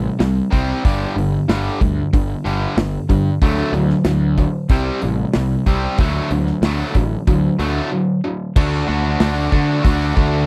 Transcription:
Already playing: C3 G3
0.19 C2 C3 G3, snare, open hi-hat
0.51 C2 C3 G3 C4, kick, open hi-hat
0.84 G1 G2 D3 G3, kick, open hi-hat
1.16 G1 G2 D3, open hi-hat
1.48 G1 G2 D3 G3, snare, open hi-hat
1.81 D2 G2 D3, kick, open hi-hat
2.13 G1 G2 D3, kick, open hi-hat
2.44 G1 G2 D3 G3, open hi-hat
2.77 G1 G2 D3, snare, open hi-hat
3.09 G2 D3, kick, open hi-hat
3.42 D2 D3 F#3 A3, kick, open hi-hat
3.73 D2 D3 F#3, open hi-hat
3.90 snare
4.05 D2 D3 F#3, snare, open hi-hat
4.38 D3 F#3, kick, open hi-hat
4.69 C2 C3 G3 C4, kick, open hi-hat
5.02 A1 C3 G3, open hi-hat
5.33 C2 C3 G3, snare, open hi-hat
5.66 C2 C3 G3 C4, kick, open hi-hat
5.98 D2 D3 F#3 A3, kick, open hi-hat
6.31 D2 D3 F#3, open hi-hat
6.47 snare
6.62 D2 D3 F#3 A3, snare, open hi-hat
6.95 A1 D3 F#3, kick, open hi-hat
7.27 D2 D3 F#3, kick, open hi-hat
7.59 D2 D3 F#3 A3, open hi-hat
7.92 D3 F#3
8.24 D3 F#3
8.56 D2 D3 A3 D4 F#4, kick, crash
8.87 D2 D3 A3 D4 F#4
9.20 D2 D3 A3 D4 F#4, snare, open hi-hat
9.51 D3 A3 D4 F#4, kick
9.83 D2 D3 A3 D4 F#4, kick, open hi-hat
10.15 D2 D3 A3 D4 F#4, kick

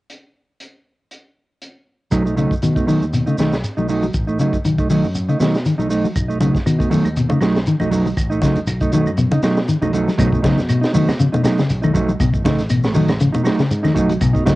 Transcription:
0.10 closed hi-hat
0.60 closed hi-hat
1.11 closed hi-hat
1.62 closed hi-hat
2.11 B1 F#3 A3 D#4, kick, closed hi-hat, shekere
2.25 A3 D#4, shekere
2.36 C#3 F#3 A3 D#4, closed hi-hat, shekere
2.51 kick, shekere
2.62 B2 D#3, closed hi-hat, shekere
2.75 A3 D#4, kick, closed hi-hat, shekere
2.87 D#3 F#3 A3 D#4, open hi-hat, shekere
3.02 D#2, closed hi-hat, shekere
3.13 B2, closed hi-hat, shekere
3.26 C#3 A3 D#4, shekere
3.38 B1 D#3 A3 D#4, snare, closed hi-hat, shekere
3.52 snare, closed hi-hat, shekere
3.64 closed hi-hat, shekere
3.77 B1 F#3 A3 D#4, shekere
3.88 F#3 A3 D#4, open hi-hat, shekere
4.03 F#3, shekere
4.14 A1, kick, closed hi-hat, shekere
4.27 A3 D#4, shekere
4.39 C#3 F#3 A3 D#4, closed hi-hat, shekere
4.53 kick, closed hi-hat, shekere
4.65 B1 D#3, closed hi-hat, shekere
4.78 A3 D#4, kick, closed hi-hat, shekere
4.90 D#3 F#3 A3 D#4, open hi-hat, shekere
5.04 F#2, shekere
5.15 muted clean electric guitar stroke, closed hi-hat, shekere
5.29 C#3 A3 D#4, closed hi-hat, shekere
5.39 B2 D#3 F#3 A3 D#4, snare, closed hi-hat, shekere
5.54 snare, shekere
5.65 D#3, closed hi-hat, shekere
5.78 B1 F#3 A3 D#4, shekere
5.89 A3 D#4, muted clean electric guitar stroke, open hi-hat, shekere
6.04 F#3, shekere
6.16 B1, kick, closed hi-hat, claves, shekere
6.28 A3 D#4, shekere
6.40 C#3 F#3 A3 D#4, closed hi-hat, high conga, shekere
6.55 muted fingered electric bass stroke, kick, snare, shekere
6.66 B2 D#3, closed hi-hat, claves, shekere
6.79 A3 D#4, kick, closed hi-hat, shekere
6.90 D#3 F#3 A3 D#4, open hi-hat, high conga, shekere
7.04 D#2, closed hi-hat, claves, shekere
7.16 B2, closed hi-hat, shekere
7.29 C#3 A3 D#4, high conga, shekere
7.41 B1 F#3 A3 D#4, muted clean electric guitar stroke, snare, closed hi-hat, claves, shekere
7.55 snare, closed hi-hat, shekere
7.66 D#3, closed hi-hat, shekere
7.80 B1 F#3 A3 D#4, high conga, claves, shekere
7.91 F#3 A3 D#4, open hi-hat, high conga, shekere
8.06 F#3, shekere
8.17 A1, kick, closed hi-hat, claves, shekere
8.30 A3 D#4, shekere
8.42 C#3 F#3 A3 D#4, kick, snare, closed hi-hat, high conga, shekere
8.56 closed hi-hat, high conga, shekere
8.67 B1, muted clean electric guitar stroke, closed hi-hat, claves, shekere
8.80 A3 D#4, kick, closed hi-hat, shekere
8.92 D#3 F#3 A3 D#4, closed hi-hat, high conga, shekere
9.06 F#2, claves, shekere
9.17 B2, closed hi-hat, high conga, shekere
9.31 C#3 D#4, closed hi-hat, high conga, shekere
9.43 B2 F#3 A3 D#4, muted clean electric guitar stroke, snare, closed hi-hat, claves, shekere
9.57 snare, shekere
9.68 D#3, closed hi-hat, shekere
9.82 B1 F#3 A3 D#4, high conga, claves, shekere
9.93 F#3 A3 D#4, closed hi-hat, high conga, shekere
10.08 F#3, snare, shekere
10.18 B1 B2 F#3 A3 D#4, kick, closed hi-hat, low conga, claves, shekere
10.32 B2 A3 D#4, kick, shekere
10.42 C#3 F#3 A3 D#4, kick, snare, closed hi-hat, high conga, shekere
10.58 snare, high conga, shekere
10.69 B2, closed hi-hat, claves, shekere
10.81 D#4, snare, shekere
10.93 D#3 F#3 A3 D#4, open hi-hat, high conga, low conga, shekere
11.08 snare, low conga, claves, shekere
11.19 C#3, closed hi-hat, high conga, shekere
11.32 B2 A3 D#4, muted fingered electric bass stroke, high conga, shekere
11.44 B2 F#3 A3 D#4, snare, closed hi-hat, claves, shekere
11.58 C#3, snare, shekere
11.69 B1, closed hi-hat, shekere
11.82 D#3 A3 D#4, high conga, claves, shekere
11.94 F#3 A3 D#4, kick, closed hi-hat, high conga, shekere
12.09 F#3, shekere
12.20 B1 B2, kick, closed hi-hat, low conga, claves, shekere
12.33 A1, kick, shekere
12.45 C#3 A3 D#4, muted clean electric guitar stroke, kick, snare, closed hi-hat, high conga, shekere
12.59 snare, closed hi-hat, shekere
12.69 B2, closed hi-hat, claves, shekere
12.83 A3, snare, shekere
12.94 D#3 F#3 A3 D#4, open hi-hat, high conga, low conga, shekere
13.08 snare, closed hi-hat, low conga, claves, shekere
13.20 C#3, closed hi-hat, high conga, shekere
13.32 B2 A3 D#4, high conga, shekere
13.43 F#3 A3 D#4, snare, closed hi-hat, claves, shekere
13.59 C#3, snare, closed hi-hat, shekere
13.71 G#2, closed hi-hat, shekere
13.83 D#3 A3 D#4, snare, high conga, claves, shekere
13.94 B1 F#3 A3 D#4, kick, closed hi-hat, high conga, shekere
14.09 F#3, closed hi-hat, shekere
14.21 B1 B2, kick, closed hi-hat, low conga, claves, shekere
14.33 B2 A3 D#4, kick, shekere
14.45 C#3 F#3 A3 D#4, kick, snare, closed hi-hat, high conga, shekere

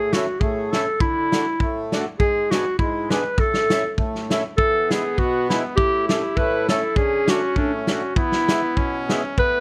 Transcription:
Already playing: A2 G#4
0.13 A3 C#4 E4 F#4, snare, hi-hat pedal
0.40 A2 G#4, kick
0.72 A3 C#4 E4 A4, snare, hi-hat pedal
1.00 D3 E4, kick
1.32 A3 D4 F#4, snare, hi-hat pedal
1.60 A2, kick
1.92 A3 D4 F#4, snare, hi-hat pedal
2.19 G#2 G#4, kick
2.50 B3 D4 F#4 G#4, snare, hi-hat pedal
2.79 G#2 E4, kick
3.10 B3 D4 G#4 B4, snare, hi-hat pedal
3.38 A2 A4, kick
3.54 snare
3.69 A3 C#4 E4, snare, hi-hat pedal
3.98 A2, kick
4.15 snare
4.30 A3 C#4 E4, snare, hi-hat pedal
4.57 E3 B3 A4, kick
4.90 G#3 B3 E4 G#4, snare, hi-hat pedal
5.18 B2 F#4, kick
5.50 G#3 B3 E4, snare, hi-hat pedal
5.76 A2 E4 G4, kick
6.08 A3 C#4 E4 G4, snare, hi-hat pedal
6.37 A2 B4, kick
6.69 A3 C#4 E4 A4, snare, hi-hat pedal
6.96 D3 C#4 G#4, kick
7.28 A3 D4 F#4, snare, hi-hat pedal
7.56 A2 D4, kick
7.87 A3 D4 F#4, snare, hi-hat pedal
8.15 E3 B3 E4, kick
8.32 snare
8.47 G#3 B3 E4, snare, hi-hat pedal
8.76 B2 C#4, kick
9.09 G#3 B3 E4, snare, hi-hat pedal
9.38 A2 B3 B4, kick

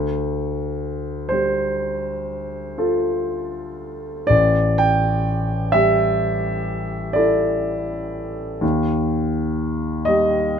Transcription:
Already playing: D2
1.29 G3 C5
2.78 F4 A4
4.27 A1 D5
4.78 G5
5.72 G3 E5
7.13 E4 A4 D5
8.61 D#2
10.05 G3 D#5

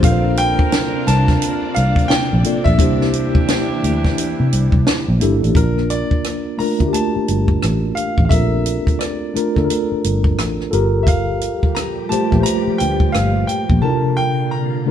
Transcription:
Already playing: C4
0.02 A#1 C3 A#3 D4 F4 A4 A#4 B4 F5, kick, closed hi-hat
0.11 C5
0.37 G5, closed hi-hat
0.59 kick
0.72 snare, closed hi-hat
1.07 C2 A5, snare, closed hi-hat
1.28 kick, snare, closed hi-hat
1.42 closed hi-hat
1.75 C2 F5, closed hi-hat
1.96 kick, closed hi-hat
2.08 G5, muted fingered electric bass stroke, snare, closed hi-hat
2.33 A#1
2.43 A#3 D4 F4 A4 D5, closed hi-hat
2.64 A#1 E5, kick, closed hi-hat
2.78 C2 E3 A#3 D4 E4 G4 C5, kick, closed hi-hat
3.01 snare
3.14 closed hi-hat
3.35 kick
3.48 snare, closed hi-hat
3.84 D2, closed hi-hat
4.05 kick, snare
4.18 closed hi-hat
4.40 C3
4.53 C2, closed hi-hat
4.72 C2, kick
4.87 snare, closed hi-hat
5.08 A#1
5.20 G1 A#3 D4 E4 G4 A4, closed hi-hat
5.43 A1, closed hi-hat
5.54 A#1 A#3 D4 F4 A#4, kick, closed hi-hat
5.78 cross-stick
5.90 D5, closed hi-hat
6.11 kick
6.24 cross-stick, closed hi-hat
6.58 A3 D4 F4 A#4 A#5, muted fingered electric bass stroke, open hi-hat
6.78 D2 A3 D4 F4 F#4, kick, closed hi-hat
6.88 G4
6.93 A5, closed hi-hat
7.16 muted fingered electric bass stroke
7.28 G1, closed hi-hat
7.48 kick
7.63 A1, cross-stick, closed hi-hat
7.95 F5, closed hi-hat
8.18 A1, kick
8.25 F5
8.29 A#1 C4 F4 A4 A#4 E5, kick, closed hi-hat
8.38 D4
8.66 closed hi-hat
8.87 kick, closed hi-hat
8.99 D5, cross-stick, closed hi-hat
9.34 A3 D4 F4 A#4, muted fingered electric bass stroke, cross-stick, closed hi-hat
9.55 D2 D4 F4 A4, kick, cross-stick
9.64 A#4
9.70 closed hi-hat
9.92 muted fingered electric bass stroke
10.04 G1, closed hi-hat
10.24 kick
10.39 A1, cross-stick, closed hi-hat
10.61 cross-stick
10.71 G1 F4 G4 A4 A#4, closed hi-hat
11.03 A#2 F3 G3 G4 E5, kick
11.07 F5, closed hi-hat
11.41 closed hi-hat
11.63 kick
11.75 A#5, cross-stick, closed hi-hat
12.09 A3 F4 G4 C5 A5, muted fingered electric bass stroke, cross-stick, closed hi-hat
12.31 A#1 A3 F4 G4 B4, kick, cross-stick
12.40 C5 A#5
12.46 closed hi-hat
12.67 muted fingered electric bass stroke
12.78 D2 G5, closed hi-hat
13.00 kick
13.12 G1 F5, cross-stick, closed hi-hat
13.47 G5, closed hi-hat
13.70 A#1, kick
13.81 C2 C3 D3 A#3 D4 E4 F4 A4 A#4 A5
13.90 F4
14.17 G5
14.51 A#5
14.85 C3 A3 D4 F4

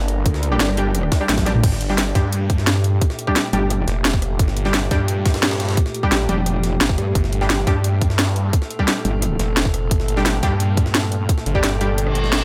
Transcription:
Already playing: G1 D3 A#3 D4
0.08 closed hi-hat
0.26 D2, kick, closed hi-hat
0.34 snare
0.43 closed hi-hat
0.52 G3 D4 G4
0.60 G1, snare, closed hi-hat
0.69 cross-stick
0.77 G3 D4 G4, closed hi-hat
0.95 cross-stick, closed hi-hat
1.03 cross-stick
1.12 kick, snare, closed hi-hat, open hi-hat
1.21 G3 D4 G4
1.29 A1, snare, closed hi-hat, open hi-hat, high tom
1.38 kick, snare, open hi-hat, high tom
1.46 G3 D4 G4, cross-stick, snare, closed hi-hat
1.55 mid tom
1.63 G1 A#2 A3 G4, kick, closed hi-hat, crash
1.72 snare
1.81 closed hi-hat
1.89 G3 D4 G4, snare
1.98 snare, closed hi-hat, open hi-hat
2.15 G2 G3 D4 G4, kick, snare, closed hi-hat
2.32 closed hi-hat
2.50 kick, closed hi-hat
2.58 snare
2.67 snare, closed hi-hat
2.76 cross-stick, snare
2.84 closed hi-hat
3.01 kick, closed hi-hat
3.10 snare
3.19 closed hi-hat
3.27 G3 D4 G4, kick
3.36 snare, closed hi-hat
3.53 G1 G3 D4 G4, closed hi-hat
3.70 cross-stick, closed hi-hat
3.88 F1, snare, closed hi-hat
4.05 snare, closed hi-hat
4.13 kick, snare
4.22 cross-stick, closed hi-hat
4.39 G1, kick, closed hi-hat
4.48 snare
4.57 closed hi-hat
4.65 G3 D4 G4, snare
4.74 snare, closed hi-hat, open hi-hat
4.91 G2 G3 D4 G4, kick, snare, closed hi-hat
5.08 closed hi-hat
5.25 kick, snare, closed hi-hat, open hi-hat
5.34 snare, open hi-hat
5.43 snare, closed hi-hat, open hi-hat
5.51 cross-stick, snare, open hi-hat
5.60 snare, closed hi-hat, open hi-hat
5.69 snare, open hi-hat
5.77 kick, closed hi-hat
5.86 snare
5.94 closed hi-hat
6.03 G3 D4 G4, kick
6.12 A1, snare, closed hi-hat
6.29 F1 G3 D4 G4, closed hi-hat
6.46 cross-stick, closed hi-hat
6.63 snare, closed hi-hat
6.81 G1, snare, closed hi-hat
6.89 kick, snare
6.98 G2, cross-stick, closed hi-hat
7.15 G1 A4, kick, closed hi-hat
7.24 snare
7.33 closed hi-hat
7.41 G3 D4 G4, snare
7.50 snare, closed hi-hat, open hi-hat
7.67 G2 G3 D4 G4, kick, snare, closed hi-hat
7.84 closed hi-hat
8.01 kick, closed hi-hat
8.10 snare
8.19 snare, closed hi-hat
8.27 cross-stick, snare
8.36 closed hi-hat
8.53 kick, closed hi-hat
8.62 snare
8.70 closed hi-hat
8.79 G3 D4 G4, kick
8.88 snare, closed hi-hat
9.05 G1, closed hi-hat
9.22 cross-stick, closed hi-hat
9.39 F1, snare, closed hi-hat
9.57 snare, closed hi-hat
9.65 kick, snare
9.74 cross-stick, closed hi-hat
9.91 G1, kick, closed hi-hat
10.00 snare
10.08 closed hi-hat
10.17 G3 D4 G4, snare
10.26 snare, closed hi-hat, open hi-hat
10.43 G2 G3 D4 G4, kick, snare, closed hi-hat
10.60 closed hi-hat
10.77 kick, closed hi-hat
10.86 snare
10.94 snare, closed hi-hat
11.03 cross-stick, snare
11.12 closed hi-hat
11.29 kick, closed hi-hat
11.38 snare
11.46 G1, closed hi-hat
11.55 G3 D4 G4, kick
11.64 snare, closed hi-hat
11.81 G3 D4 G4, closed hi-hat
11.98 cross-stick, closed hi-hat, reverse cymbal
12.07 cross-stick
12.15 closed hi-hat
12.24 snare
12.32 snare, closed hi-hat, open hi-hat

